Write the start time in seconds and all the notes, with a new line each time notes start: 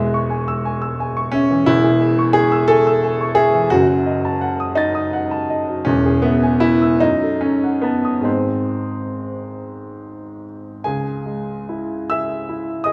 Already playing: E1 E2 G#3 G#4 E5
0.14 C#6
0.30 G#5
0.48 E6
0.65 G#5
0.82 E6
1.00 G#5
1.17 C#6
1.32 C#4 E5
1.51 E3
1.66 E1 E2 E4
1.84 G#4
2.02 E5
2.19 C#6
2.33 G#4 G#5
2.52 E6
2.68 A4 G#5
2.87 E6
3.04 G#5
3.21 C#6
3.35 G#4 E5
3.54 E3
3.70 F#1 F#2 F#4
3.88 F#4
4.06 D#5
4.25 A5
4.41 F#5
4.60 D#6
4.75 D#4 A6
4.95 D#6
5.13 F#5
5.31 A5
5.50 D#5
5.68 F#3
5.85 E1 E2 C#4
6.06 G#4
6.22 B3 E5
6.43 G#5
6.60 E4 E5
6.82 E6
7.00 F#2 D#4
7.23 A4
7.41 C#4 D#5
7.64 F#5
7.82 B3 A5
8.05 D#6
8.21 G#2 C4 G#4 D#5
8.25 G#1
10.84 C#2 G#4 G#5
11.26 G#3
11.69 E4
12.10 G#4 E5 E6
12.49 E4
12.84 G#4 D#5 D#6